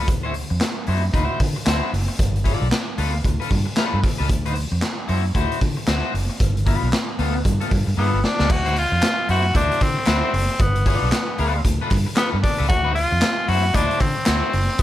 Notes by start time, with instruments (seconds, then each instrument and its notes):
0.08 fingered electric bass D2, muted clean electric guitar stroke, kick, closed hi-hat
0.23 clean electric guitar E4 F#4 C5
0.34 muted clean electric guitar stroke, open hi-hat
0.50 fingered electric bass F2, muted clean electric guitar stroke
0.60 muted clean electric guitar stroke, snare, clap, closed hi-hat
0.87 fingered electric bass F#2, clean electric guitar E4 F#4 C5, open hi-hat
1.03 muted clean electric guitar stroke
1.13 fingered electric bass D2, clean electric guitar E4 F#4 C5, kick, closed hi-hat
1.40 fingered electric bass D3, kick, open hi-hat
1.56 muted clean electric guitar stroke
1.65 fingered electric bass D2, clean electric guitar E4 F#4 C5, snare, clap, closed hi-hat
1.93 fingered electric bass F#1, muted clean electric guitar stroke, open hi-hat
2.08 muted clean electric guitar stroke
2.19 fingered electric bass G1, kick, closed hi-hat
2.36 closed hi-hat
2.44 clean electric guitar F4 A4 D5, kick, open hi-hat
2.62 fingered electric bass B1
2.71 muted clean electric guitar stroke, snare, clap, closed hi-hat
2.87 muted clean electric guitar stroke
2.98 fingered electric bass D2, clean electric guitar F4 A4 B4, open hi-hat
3.13 muted clean electric guitar stroke
3.24 fingered electric bass D2, muted clean electric guitar stroke, kick, closed hi-hat
3.40 clean electric guitar F4 A4 B4, closed hi-hat
3.51 fingered electric bass G2, muted clean electric guitar stroke, kick, open hi-hat
3.65 muted clean electric guitar stroke
3.76 clean electric guitar F4 A4 B4, snare, clap, closed hi-hat
3.94 fingered electric bass G2
4.03 muted clean electric guitar stroke, kick, open hi-hat
4.18 fingered electric bass C#2, clean electric guitar F4 A4 B4
4.29 fingered electric bass D2, muted clean electric guitar stroke, kick, closed hi-hat
4.46 clean electric guitar E4 F#4 C5, closed hi-hat
4.55 muted clean electric guitar stroke, open hi-hat
4.72 fingered electric bass F2, muted clean electric guitar stroke
4.81 muted clean electric guitar stroke, snare, clap, closed hi-hat
5.08 fingered electric bass F#2, clean electric guitar E4 F#4 C5, open hi-hat
5.24 muted clean electric guitar stroke
5.35 fingered electric bass D2, clean electric guitar E4 F#4 C5, kick, closed hi-hat
5.52 closed hi-hat
5.61 fingered electric bass D3, muted clean electric guitar stroke, kick, open hi-hat
5.77 muted clean electric guitar stroke
5.87 fingered electric bass D2, clean electric guitar E4 F#4 C5, snare, clap, closed hi-hat
6.14 fingered electric bass F#1, muted clean electric guitar stroke, open hi-hat
6.30 muted clean electric guitar stroke
6.40 fingered electric bass G1, kick, closed hi-hat
6.57 closed hi-hat
6.66 clean electric guitar B3 F4 B4, kick, open hi-hat
6.82 fingered electric bass B1
6.92 muted clean electric guitar stroke, snare, clap, closed hi-hat
7.09 muted clean electric guitar stroke
7.19 fingered electric bass D2, clean electric guitar B3 F4 A4, open hi-hat
7.35 muted clean electric guitar stroke
7.45 fingered electric bass G2, muted clean electric guitar stroke, kick, closed hi-hat
7.60 clean electric guitar B3 F4 A4, closed hi-hat
7.71 fingered electric bass G2, muted clean electric guitar stroke, kick, open hi-hat
7.87 fingered electric bass G2, muted clean electric guitar stroke
7.97 fingered electric bass G2, clean electric guitar B3 F4 A4, tenor saxophone B3
8.14 fingered electric bass G1
8.24 tenor saxophone D4, muted clean electric guitar stroke, snare
8.39 fingered electric bass C#2, clean electric guitar B3 F4 A4, snare
8.49 fingered electric bass D2, tenor saxophone F#4, muted clean electric guitar stroke, kick, crash
8.65 clean electric guitar E4 F#4 C5, closed hi-hat
8.76 tenor saxophone F4, muted clean electric guitar stroke, open hi-hat
8.92 fingered electric bass F2, muted clean electric guitar stroke
9.02 muted clean electric guitar stroke, snare, clap, closed hi-hat
9.29 fingered electric bass F#2, clean electric guitar E4 F#4 C5, tenor saxophone F#4, open hi-hat
9.45 muted clean electric guitar stroke
9.54 fingered electric bass D2, tenor saxophone D4, clean electric guitar E4 F#4 C5, kick, closed hi-hat
9.71 closed hi-hat
9.81 fingered electric bass D3, tenor saxophone C4, muted clean electric guitar stroke, kick, clap, open hi-hat
9.97 muted clean electric guitar stroke
10.06 fingered electric bass D2, clean electric guitar E4 F#4 C5, snare, clap, closed hi-hat
10.33 fingered electric bass F#1, muted clean electric guitar stroke, open hi-hat
10.49 muted clean electric guitar stroke
10.60 fingered electric bass G1, tenor saxophone B3, kick, closed hi-hat
10.76 closed hi-hat
10.86 tenor saxophone B3, clean electric guitar F4 A4 D5, kick, open hi-hat
11.02 fingered electric bass B1
11.12 muted clean electric guitar stroke, snare, clap, closed hi-hat
11.28 muted clean electric guitar stroke
11.38 fingered electric bass D2, clean electric guitar F4 A4 B4, open hi-hat
11.54 muted clean electric guitar stroke
11.65 fingered electric bass D2, muted clean electric guitar stroke, kick, closed hi-hat
11.81 clean electric guitar F4 A4 B4
11.90 fingered electric bass G2, muted clean electric guitar stroke, kick, clap, open hi-hat
12.06 muted clean electric guitar stroke
12.16 tenor saxophone B3, clean electric guitar F4 A4 B4, snare, clap, closed hi-hat
12.34 fingered electric bass G2
12.43 tenor saxophone D4, muted clean electric guitar stroke, kick, open hi-hat
12.58 fingered electric bass C#2, clean electric guitar F4 A4 B4
12.68 fingered electric bass D2, tenor saxophone F#4, muted clean electric guitar stroke, kick, closed hi-hat
12.84 clean electric guitar E4 F#4 C5
12.95 tenor saxophone F4, muted clean electric guitar stroke, open hi-hat
13.11 fingered electric bass F2, muted clean electric guitar stroke
13.22 muted clean electric guitar stroke, snare, clap, closed hi-hat
13.48 fingered electric bass F#2, clean electric guitar E4 F#4 C5, tenor saxophone F#4, open hi-hat
13.63 muted clean electric guitar stroke
13.74 fingered electric bass D2, tenor saxophone D4, clean electric guitar E4 F#4 C5, kick, closed hi-hat
13.91 closed hi-hat
14.00 fingered electric bass D3, tenor saxophone C4, kick, clap, open hi-hat
14.17 muted clean electric guitar stroke
14.26 fingered electric bass D2, clean electric guitar E4 F#4 C5, snare, clap, closed hi-hat
14.53 fingered electric bass F#1, muted clean electric guitar stroke, open hi-hat
14.69 muted clean electric guitar stroke
14.79 fingered electric bass G1, kick, closed hi-hat